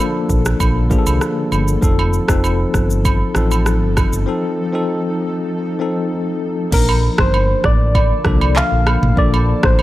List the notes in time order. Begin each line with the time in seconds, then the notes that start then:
Already playing: D3 F3 A#3 D4 A4
0.30 A#1, kick, shaker
0.45 cross-stick, shaker
0.60 A#1, kick, high agogo, shaker
0.90 F3 A#3 D4 G#4, kick, shaker
0.99 A4
1.06 C2, high agogo, shaker
1.21 cross-stick, shaker
1.52 G1, high agogo, shaker
1.68 shaker
1.81 F1 F3 C4 D#4 A4, kick, shaker
1.99 high agogo
2.13 shaker
2.28 F1 F3 C4 D#4 A4, kick, cross-stick, shaker
2.44 high agogo, shaker
2.74 G1, kick, cross-stick, shaker
2.90 shaker
3.05 kick, high agogo, shaker
3.34 A1 F3 C4 D#4 A4, cross-stick, shaker
3.51 high agogo, shaker
3.66 cross-stick, shaker
3.82 G1
3.97 kick, cross-stick, high agogo, shaker
4.13 G1, shaker
4.26 F3 C4 D#4 A4
4.72 F3 C4 D#4 A4
5.79 F3 C4 D#4 A4
6.71 A#1 D3 F3 A#3 D4 A#4 A5, kick, crash
6.89 high agogo
7.18 G1 C5, kick, cross-stick
7.34 high agogo
7.64 A1 D5, kick, cross-stick
7.95 kick, high agogo
8.24 C2 F3 A#3 D4 A4, kick, cross-stick
8.41 high agogo
8.56 F5, clap, low woodblock
8.72 A#1
8.87 cross-stick, high agogo
9.03 A1, mid tom
9.16 A#1 F3 A#3 D4 A4 D5, kick
9.34 high agogo
9.63 A1 C5, kick, cross-stick
9.79 high agogo